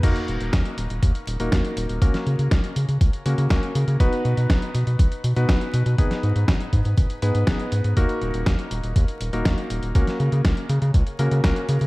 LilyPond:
<<
  \new Staff \with { instrumentName = "Electric grand piano" } { \time 4/4 \key ees \minor \tempo 4 = 121 <bes ees' ges' bes'>2~ <bes ees' ges' bes'>8. <bes ees' ges' bes'>4~ <bes ees' ges' bes'>16 | <bes des' ges' bes'>2~ <bes des' ges' bes'>8 <bes des' ges' bes'>8 <bes des' ges' bes'>4 | <b dis' fis' b'>2~ <b dis' fis' b'>8. <b dis' fis' b'>4~ <b dis' fis' b'>16 | <ces' ees' aes' ces''>2~ <ces' ees' aes' ces''>8 <ces' ees' aes' ces''>8 <ces' ees' aes' ces''>4 |
<bes ees' ges' bes'>2~ <bes ees' ges' bes'>8. <bes ees' ges' bes'>4~ <bes ees' ges' bes'>16 | <bes des' ges' bes'>2~ <bes des' ges' bes'>8 <bes des' ges' bes'>8 <bes des' ges' bes'>4 | }
  \new Staff \with { instrumentName = "Analog synth bass" } { \clef bass \time 4/4 \key ees \minor ees,16 r16 ees,,16 ees,,16 ees,16 r16 ees,,16 ees,,16 ees,16 r16 ees,,16 ees,,16 ees,16 r16 ees,,16 ees,,16 | des,16 r16 des16 des16 des,16 r16 des16 des16 des,16 r16 des16 des16 des,16 r16 des16 des16 | b,,16 r16 b,16 b,16 b,,16 r16 b,16 b,16 b,,16 r16 b,16 b,16 b,,16 r16 b,16 b,16 | aes,,16 r16 aes,16 aes,16 aes,,16 r16 aes,16 aes,16 aes,,16 r16 aes,16 aes,16 aes,,16 r16 aes,16 aes,16 |
ees,16 r16 ees,,16 ees,,16 ees,16 r16 ees,,16 ees,,16 ees,16 r16 ees,,16 ees,,16 ees,16 r16 ees,,16 ees,,16 | des,16 r16 des16 des16 des,16 r16 des16 des16 des,16 r16 des16 des16 des,16 r16 des16 des16 | }
  \new DrumStaff \with { instrumentName = "Drums" } \drummode { \time 4/4 <cymc hh bd>16 hh16 hh16 hh16 <hh bd sn>16 hh16 hh16 hh16 <hh bd>16 hh16 hh16 hh16 <hh bd sn>16 hh16 hh16 hh16 | <hh bd>16 <hh sn>16 hh16 hh16 <hh bd sn>16 hh16 hh16 hh16 <hh bd>16 hh16 hh16 hh16 <hh bd sn>16 hh16 hh16 hh16 | <hh bd>16 hh16 hh16 hh16 <hh bd sn>16 hh16 hh16 hh16 <hh bd>16 hh16 hh16 hh16 <hh bd sn>16 hh16 hh16 hh16 | <hh bd>16 <hh sn>16 hh16 hh16 <hh bd sn>16 hh16 <hh bd>16 hh16 <hh bd>16 hh16 hh16 hh16 <hh bd sn>16 hh16 hh16 hh16 |
<hh bd>16 hh16 hh16 hh16 <hh bd sn>16 hh16 hh16 hh16 <hh bd>16 hh16 hh16 hh16 <hh bd sn>16 hh16 hh16 hh16 | <hh bd>16 <hh sn>16 hh16 hh16 <hh bd sn>16 hh16 hh16 hh16 <hh bd>16 hh16 hh16 hh16 <hh bd sn>16 hh16 hh16 hh16 | }
>>